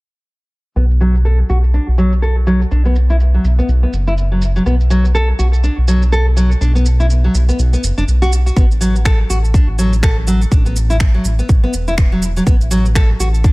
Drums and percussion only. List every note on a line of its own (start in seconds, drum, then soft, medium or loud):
0.76 shaker soft
0.91 shaker soft
1.01 shaker medium
1.15 shaker soft
1.25 shaker soft
1.49 shaker medium
1.64 shaker soft
1.74 shaker soft
1.98 shaker medium
2.12 shaker soft
2.23 shaker soft
2.47 shaker medium
2.61 shaker soft
2.71 shaker soft
2.85 shaker soft
2.96 shaker medium
3.10 shaker soft
3.20 shaker soft
3.44 shaker medium
3.59 shaker soft
3.69 shaker soft
3.93 shaker medium
4.07 shaker soft
4.18 shaker medium
4.42 shaker medium
4.56 shaker soft
4.66 shaker soft
4.81 shaker soft
4.91 shaker medium
5.05 shaker soft
5.15 shaker medium
5.39 shaker medium
5.54 shaker soft
5.64 shaker soft
5.88 shaker medium
6.02 shaker soft
6.13 shaker soft
6.37 shaker medium
6.51 shaker soft
6.61 shaker soft
6.76 shaker soft
6.86 shaker medium
7.00 shaker soft
7.10 shaker soft
7.35 shaker medium
7.49 shaker soft
7.59 shaker soft
7.73 shaker soft
7.84 shaker medium
7.98 shaker soft
8.08 shaker soft
8.23 shaker soft
8.32 shaker medium
8.47 shaker soft
8.57 kick loud
8.57 shaker soft
8.71 shaker soft
8.81 shaker medium
8.96 shaker soft
9.05 finger snap medium
9.05 kick loud
9.05 shaker soft
9.30 shaker medium
9.45 shaker soft
9.54 kick loud
9.54 shaker soft
9.79 shaker medium
9.93 shaker soft
10.03 finger snap medium
10.03 kick loud
10.03 shaker soft
10.27 shaker medium
10.42 shaker soft
10.52 kick loud
10.52 shaker soft
10.66 shaker soft
10.76 shaker medium
10.90 shaker soft
11.00 finger snap medium
11.00 kick loud
11.00 shaker soft
11.25 shaker medium
11.39 shaker soft
11.49 kick loud
11.49 shaker soft
11.73 shaker medium
11.88 shaker soft
11.98 finger snap medium
11.98 kick loud
11.98 shaker soft
12.22 shaker medium
12.37 shaker soft
12.47 kick loud
12.47 shaker soft
12.61 shaker soft
12.71 shaker medium
12.86 shaker soft
12.95 finger snap loud
12.95 kick loud
12.95 shaker soft
13.20 shaker medium
13.34 shaker soft
13.44 kick loud
13.44 shaker soft